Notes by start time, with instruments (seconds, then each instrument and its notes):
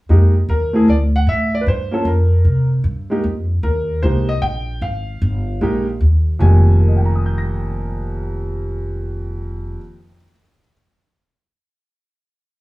0.09 upright bass F2, grand piano G#3 A#3 D#4 G4
0.49 upright bass D#2, grand piano A#4
0.73 grand piano A3 C4 E4 G#4
0.88 upright bass D2, grand piano D5
1.16 grand piano F#5
1.27 upright bass A2, grand piano E5
1.55 grand piano D5
1.61 grand piano B4
1.67 upright bass G2, grand piano C5
1.91 grand piano A#3 C#4 F4 A4
2.05 upright bass F2, grand piano A#4
2.45 upright bass C3
2.84 upright bass G2
3.10 grand piano G#3 A#3 D#4 G4
3.24 upright bass F2
3.63 upright bass D#2, grand piano A#4
4.03 upright bass C2, grand piano G#3 A#3 D#4 G4 C5
4.29 grand piano D#5
4.42 upright bass A#1, grand piano G5
4.82 upright bass G#1, grand piano F5
5.22 upright bass G1
5.61 upright bass A#1, grand piano G#3 A#3 D#4 G4
6.01 upright bass D#2
6.39 upright bass F1, grand piano F2 D#3 G3 G#3 A#3 G#5
6.81 grand piano A#4
6.88 grand piano D#5
6.97 grand piano G5
7.06 grand piano A#5
7.15 grand piano D#6
7.26 grand piano G6
7.38 grand piano A#6